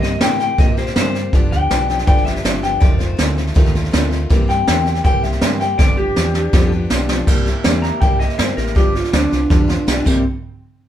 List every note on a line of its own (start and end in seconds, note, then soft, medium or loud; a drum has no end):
0.00 0.16 G2 loud
0.00 0.22 C4 soft
0.00 0.21 G4 medium
0.00 0.21 D#5 medium
0.00 snare soft
0.06 0.21 A#3 soft
0.21 0.53 A2 loud
0.21 0.40 E3 medium
0.21 0.40 A#3 medium
0.21 0.40 C4 medium
0.21 0.38 G4 medium
0.21 0.39 G5 loud
0.21 snare loud
0.21 hi-hat pedal medium
0.39 0.58 A#3 soft
0.39 0.59 C4 soft
0.39 0.58 G4 medium
0.39 0.58 G5 loud
0.39 snare soft
0.58 0.91 A#2 medium
0.58 0.77 C3 medium
0.58 0.77 E3 medium
0.58 0.78 A#3 medium
0.58 0.77 C4 loud
0.58 0.76 G4 medium
0.58 0.77 D#5 loud
0.58 kick loud
0.58 snare soft
0.77 0.96 A#3 medium
0.77 0.97 C4 medium
0.77 0.96 G4 medium
0.77 0.96 C5 loud
0.77 snare soft
0.86 snare soft
0.96 1.28 G2 loud
0.96 1.15 E3 medium
0.96 1.15 A#3 medium
0.96 1.15 C4 medium
0.96 1.14 G4 medium
0.96 1.32 C5 loud
0.96 snare loud
0.96 hi-hat pedal loud
1.15 1.34 A#3 soft
1.15 1.34 C4 medium
1.15 1.33 G4 medium
1.15 snare soft
1.33 1.49 G1 loud
1.33 1.52 G2 medium
1.33 1.52 D3 medium
1.33 1.52 F3 medium
1.33 1.53 B3 medium
1.33 1.52 D4 medium
1.33 1.51 G4 medium
1.33 kick loud
1.33 snare soft
1.52 1.68 D2 medium
1.52 1.69 F3 soft
1.52 1.70 B3 soft
1.52 1.71 D4 soft
1.52 1.71 G4 medium
1.52 2.06 G5 loud
1.52 snare soft
1.70 2.02 B1 medium
1.70 1.89 F3 medium
1.70 1.89 B3 medium
1.70 1.88 D4 medium
1.70 1.87 G4 medium
1.70 snare loud
1.70 hi-hat pedal medium
1.88 2.06 F3 soft
1.88 2.07 B3 soft
1.88 2.07 D4 medium
1.88 2.07 G4 medium
1.88 snare soft
1.99 snare soft
2.07 2.39 G1 medium
2.07 2.26 G2 medium
2.07 2.26 D3 medium
2.07 2.26 F3 medium
2.07 2.25 B3 medium
2.07 2.24 D4 medium
2.07 2.24 G4 medium
2.07 2.25 G5 loud
2.07 kick loud
2.07 snare soft
2.17 snare soft
2.25 2.42 F3 soft
2.25 2.43 B3 medium
2.25 2.44 D4 medium
2.25 2.44 G4 medium
2.25 2.62 E5 loud
2.25 snare soft
2.36 snare soft
2.43 2.76 G1 loud
2.43 2.63 F3 medium
2.43 2.63 B3 medium
2.43 2.61 D4 medium
2.43 2.61 G4 medium
2.43 snare loud
2.43 hi-hat pedal medium
2.62 2.81 F3 soft
2.62 2.81 B3 medium
2.62 2.81 D4 medium
2.62 2.81 G4 medium
2.62 2.81 G5 loud
2.62 snare soft
2.80 3.14 F1 loud
2.80 3.00 F2 medium
2.80 3.00 C3 medium
2.80 3.00 D#3 medium
2.80 3.00 A3 medium
2.80 2.99 D#4 medium
2.80 2.98 F4 medium
2.80 2.98 D5 medium
2.80 kick loud
2.80 snare soft
2.98 3.16 D#3 soft
2.98 3.17 A3 soft
2.98 3.18 D#4 soft
2.98 3.18 F4 medium
2.98 3.71 C5 loud
2.98 snare soft
3.17 3.51 D2 medium
3.17 3.36 D#3 medium
3.17 3.37 A3 medium
3.17 3.37 D#4 medium
3.17 3.35 F4 medium
3.17 snare loud
3.17 hi-hat pedal medium
3.37 3.54 D#3 soft
3.37 3.55 A3 soft
3.37 3.55 D#4 medium
3.37 3.55 F4 medium
3.37 snare soft
3.47 snare soft
3.54 3.88 D#2 loud
3.54 3.74 F2 loud
3.54 3.74 C3 loud
3.54 3.74 D#3 loud
3.54 3.74 A3 medium
3.54 3.74 D#4 loud
3.54 3.72 F4 loud
3.54 kick loud
3.54 snare soft
3.65 snare soft
3.74 3.90 D#3 medium
3.74 3.91 A3 medium
3.74 3.92 D#4 medium
3.74 3.93 F4 medium
3.74 snare soft
3.85 snare soft
3.91 4.25 D2 loud
3.91 4.11 D#3 medium
3.91 4.11 A3 medium
3.91 4.10 D#4 medium
3.91 4.09 F4 medium
3.91 snare loud
3.91 hi-hat pedal medium
4.10 4.30 D#3 medium
4.10 4.30 A3 medium
4.10 4.30 D#4 medium
4.10 4.30 F4 medium
4.10 snare soft
4.30 4.46 C2 loud
4.30 4.49 C3 medium
4.30 4.49 E3 loud
4.30 4.49 A#3 loud
4.30 4.49 C4 loud
4.30 4.47 G4 loud
4.30 kick loud
4.30 snare soft
4.48 4.65 G2 loud
4.48 4.67 A#3 soft
4.48 4.68 C4 medium
4.48 4.67 G4 medium
4.48 5.03 G5 loud
4.48 snare soft
4.67 4.99 E2 medium
4.67 4.86 E3 medium
4.67 4.86 A#3 medium
4.67 4.86 C4 medium
4.67 4.85 G4 medium
4.67 snare loud
4.67 hi-hat pedal medium
4.86 5.04 A#3 soft
4.86 5.05 C4 soft
4.86 5.05 G4 medium
4.86 snare soft
4.95 snare soft
5.04 5.36 C2 loud
5.04 5.23 C3 medium
5.04 5.23 E3 medium
5.04 5.24 A#3 medium
5.04 5.24 C4 medium
5.04 5.22 G4 loud
5.04 5.23 G5 loud
5.04 kick loud
5.04 snare soft
5.23 5.43 A#3 medium
5.23 5.43 C4 medium
5.23 5.42 G4 medium
5.23 5.59 E5 loud
5.23 snare soft
5.32 snare soft
5.41 5.74 G2 loud
5.41 5.61 E3 medium
5.41 5.61 A#3 medium
5.41 5.61 C4 medium
5.41 5.59 G4 medium
5.41 snare loud
5.41 hi-hat pedal medium
5.60 5.81 A#3 soft
5.60 5.80 C4 medium
5.60 5.79 G4 medium
5.60 5.78 G5 medium
5.60 snare soft
5.78 6.11 G1 medium
5.78 5.98 G2 medium
5.78 5.98 D3 medium
5.78 5.98 F3 medium
5.78 5.98 B3 medium
5.78 5.97 D4 medium
5.78 5.96 G4 medium
5.78 5.96 D5 loud
5.78 kick loud
5.78 snare medium
5.97 6.15 F3 soft
5.97 6.16 B3 medium
5.97 6.16 D4 soft
5.97 6.16 G4 medium
5.97 6.69 G4 loud
6.16 6.48 E2 medium
6.16 6.35 F3 medium
6.16 6.35 B3 medium
6.16 6.34 D4 medium
6.16 6.33 G4 medium
6.16 snare medium
6.16 hi-hat pedal medium
6.34 6.52 F3 soft
6.34 6.53 B3 medium
6.34 6.53 D4 medium
6.34 6.53 G4 medium
6.34 snare medium
6.53 6.85 F2 medium
6.53 6.72 G2 medium
6.53 6.72 D3 loud
6.53 6.72 F3 loud
6.53 6.72 B3 loud
6.53 6.72 D4 loud
6.53 6.71 G4 loud
6.53 kick loud
6.53 snare medium
6.72 6.89 F3 medium
6.72 6.90 B3 medium
6.72 6.91 D4 medium
6.72 6.90 G4 medium
6.90 7.22 B1 loud
6.90 7.09 F3 medium
6.90 7.09 B3 medium
6.90 7.09 D4 medium
6.90 7.08 G4 medium
6.90 snare loud
6.90 hi-hat pedal medium
7.09 7.28 F3 medium
7.09 7.28 B3 medium
7.09 7.28 D4 medium
7.09 7.27 G4 medium
7.09 snare loud
7.27 7.52 C2 loud
7.27 7.46 C3 loud
7.27 7.46 G3 medium
7.27 7.47 A#3 loud
7.27 7.46 E4 medium
7.27 7.44 G4 loud
7.27 kick loud
7.27 snare soft
7.27 crash loud
7.46 7.64 A#3 medium
7.46 7.64 E4 medium
7.46 7.64 G4 medium
7.46 snare soft
7.64 7.89 E2 medium
7.64 7.83 G3 medium
7.64 7.83 A#3 medium
7.64 7.83 E4 medium
7.64 7.81 G4 medium
7.64 snare loud
7.64 hi-hat pedal medium
7.82 8.01 A#3 soft
7.82 8.02 E4 medium
7.82 8.01 G4 medium
7.82 8.00 A#5 medium
7.82 snare soft
8.01 8.26 C2 medium
8.01 8.20 C3 medium
8.01 8.20 G3 medium
8.01 8.21 A#3 medium
8.01 8.20 E4 medium
8.01 8.19 G4 loud
8.01 8.19 G5 loud
8.01 kick loud
8.01 snare soft
8.19 8.38 A#3 soft
8.19 8.38 E4 medium
8.19 8.39 G4 medium
8.19 8.38 D#5 medium
8.19 snare soft
8.30 snare soft
8.38 8.51 G2 loud
8.38 8.57 G3 medium
8.38 8.58 A#3 medium
8.38 8.57 E4 medium
8.38 8.56 G4 medium
8.38 8.56 C5 medium
8.38 snare loud
8.38 hi-hat pedal loud
8.57 8.76 A1 medium
8.57 8.75 A#3 medium
8.57 8.75 E4 soft
8.57 8.76 G4 medium
8.57 8.75 A#4 medium
8.57 snare soft
8.67 snare soft
8.75 9.01 G1 loud
8.75 8.94 G3 medium
8.75 8.94 B3 medium
8.75 8.94 D4 medium
8.75 8.92 F4 medium
8.75 8.95 G4 medium
8.75 kick loud
8.75 snare soft
8.93 9.11 B3 soft
8.93 9.13 D4 soft
8.93 9.12 F4 medium
8.93 9.13 F4 medium
8.93 snare soft
9.04 snare soft
9.12 9.26 D2 medium
9.12 9.31 G3 medium
9.12 9.31 B3 medium
9.12 9.31 D4 medium
9.12 10.04 D4 loud
9.12 9.30 F4 medium
9.12 snare loud
9.12 hi-hat pedal medium
9.31 9.44 C2 medium
9.31 9.49 B3 soft
9.31 9.50 D4 soft
9.31 9.50 F4 medium
9.31 snare soft
9.50 9.75 E2 medium
9.50 9.69 G3 medium
9.50 9.69 B3 medium
9.50 9.68 D4 medium
9.50 9.66 F4 medium
9.50 kick loud
9.50 snare medium
9.68 9.87 B3 medium
9.68 9.88 D4 medium
9.68 9.87 F4 medium
9.68 snare medium
9.87 10.00 B1 medium
9.87 10.05 G3 medium
9.87 10.06 B3 medium
9.87 10.07 D4 medium
9.87 10.07 F4 medium
9.87 snare loud
9.87 hi-hat pedal loud
10.05 10.24 C2 medium
10.05 10.21 C3 medium
10.05 10.21 G3 medium
10.05 10.22 A#3 medium
10.05 10.24 C4 medium
10.05 10.22 E4 medium
10.05 10.22 G4 medium
10.05 kick loud
10.05 crash medium